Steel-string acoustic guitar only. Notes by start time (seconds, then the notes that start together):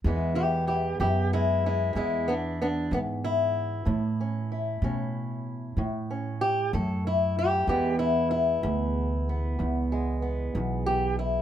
0.06 E2 E3 G#3 B3 E4
0.35 E4 G4
0.67 E4 G4
1.00 E2 E4 G4
1.33 G#3 E4
1.66 G#3 E4
1.93 E2 G#3
1.97 E4
2.28 B3 D4
2.62 B3 D4
2.91 E2 B3
3.24 E4
3.85 A2
4.21 C#4
4.52 E4
4.84 A2 C#4
5.78 A2
6.11 C#4
6.41 G4
6.73 A2 A4
7.07 E4
7.39 G4
7.68 E2 E3 G#3 B3 G4
7.99 E4
8.31 E4
8.63 E2
9.29 B3
9.59 E2
9.92 G#3
10.22 B3
10.55 E2
10.86 G4
11.19 E4